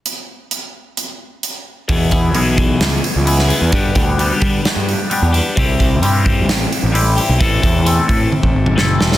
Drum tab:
HH |x---x---x---x---|o-o-o-o-o-o-o-o-|o-o-o-o-o-o-o-o-|o-o-o-o-o-o-o-o-|
SD |----------------|--------o----o--|--------o-------|--------o-------|
T1 |----------------|----------------|----------------|----------------|
T2 |----------------|----------------|----------------|----------------|
BD |----------------|o-o---o---------|o-o---o---------|o-o---o---------|

HH |o-o-o-o---------|
SD |------------o-oo|
T1 |--------o-------|
T2 |-----------o----|
BD |o-o---o--o------|